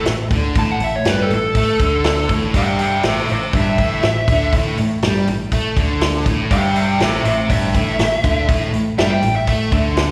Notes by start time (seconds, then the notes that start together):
0.05 A1 A2, snare, open hi-hat
0.31 D2 D3, kick, open hi-hat
0.55 A1 A2 A5, kick, open hi-hat
0.71 F#5
0.80 A1 A2 E5, open hi-hat
0.96 C#5
1.05 G2 G3 B4, snare, open hi-hat
1.22 A4
1.30 A1 A2, open hi-hat
1.34 A4
1.55 A2 A3, kick, open hi-hat
1.79 D2 D3, kick, open hi-hat
2.04 snare, open hi-hat
2.29 A1 A2, kick, open hi-hat
2.54 G2 G3 E5 G5, kick, open hi-hat
2.79 E5 G5, open hi-hat
3.03 A1 A2 C5 E5, snare, open hi-hat
3.29 A1 A2 C5, open hi-hat
3.33 E5
3.53 G1 G2 E5, kick, open hi-hat
3.78 A1 A2, kick, open hi-hat
4.03 A1 A2, snare, open hi-hat
4.28 D2 D3, kick, open hi-hat
4.52 A1 A2, kick, open hi-hat
4.78 A1 A2, open hi-hat
5.02 G2 G3, snare, open hi-hat
5.27 A1 A2, open hi-hat
5.52 A2 A3, kick, open hi-hat
5.77 D2 D3, kick, open hi-hat
6.01 snare, open hi-hat
6.26 A1 A2, kick, open hi-hat
6.50 G2 G3 E5 G5, kick, open hi-hat
6.76 E5 G5, open hi-hat
6.99 A1 A2 C5, snare, open hi-hat
7.03 E5
7.25 A1 A2 C5 E5, open hi-hat
7.49 G1 G2 E5, kick, open hi-hat
7.74 A1 A2, kick, open hi-hat
7.98 A1 A2, snare, open hi-hat
8.23 D2 D3, kick, open hi-hat
8.49 A1 A2, kick, open hi-hat
8.73 A1 A2, open hi-hat
8.98 G2 G3 E5, snare, open hi-hat
9.11 G5
9.22 A1 A2, open hi-hat
9.36 E5
9.47 A2 A3 E5, kick, open hi-hat
9.72 D2 D3, kick, open hi-hat
9.97 snare, open hi-hat